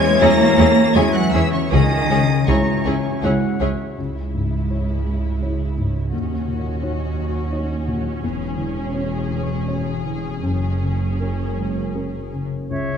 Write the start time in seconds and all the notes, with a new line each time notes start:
Already playing: E2 E3 G#3 C#4 C#5 G#5 G#6
0.20 E2 G#3 A#3 C#4 E4 G#4 C#5 A#5 A#6
0.46 G#4
0.58 E2 C#4 E4 G#4 C#5
0.70 G#5
0.93 E2 E3 G#3 C#4 E4 G#4 C#5 E5 G#5 C#6 G#6
1.13 F#3 F#5 F#6
1.31 E2 E3 C#4 E4 G#4 C#5 E5 E6
1.47 G#4
1.52 C#3 C#5 C#6
1.71 C#2 C#3 D#3 C#4 G#4 C#5 D#5 G#5 D#6
1.98 C#4
2.10 C#2 C#4 G#4 C#5
2.23 G#3
2.46 C#2 C#3 E3 G#3 C#4 E4 G#4 C#5 A#5 C#6
2.73 C#5
2.85 C#2 C#4 E4 G#4 C#5 G#5
2.98 G#4
3.23 C#2 G#3 C#4 E4 G#4 C#5 E5 F#5
3.48 G#4
3.60 C#2 C#4 E4 G#4 C#5 E5
3.74 C#5
3.97 C#2 C#3 G#3 E4 E5
4.22 G#3
4.34 G#2
4.46 E4
4.70 E4 C#5
4.94 G#4
5.07 G#3
5.18 E5
5.42 E4 G#4 C#5
5.66 E4
5.78 G#2
5.89 C#4
6.11 D#2 D#3 C#4 F#4 D#5
6.35 D#4
6.48 A#2
6.59 C#5
6.82 D#4 F#4 C#5
7.06 D#5
7.17 F#3
7.29 C#6
7.52 D#4 C#5 D#5
7.76 C#5
7.88 A#2
7.99 F#3
8.22 E1 E2 E3 G#4 C#5
8.47 C#4
8.58 E3
8.71 C#5
8.94 C#4 G#4 C#5
9.18 C#5
9.30 G#3
9.43 C#6
9.67 C#4 C#5
9.92 C#4
10.06 E3
10.17 G#3
10.43 F#1 F#2 C#4 A#4
10.69 G#3
10.82 C#3
10.94 C#4
11.19 C#4 A#4
11.44 G#4
11.57 G#3
11.69 C#5
11.94 C#4 G#4 A#4
12.20 C#4
12.33 C#3
12.45 C#3
12.70 C#2 C#3 G#4 C#5 E5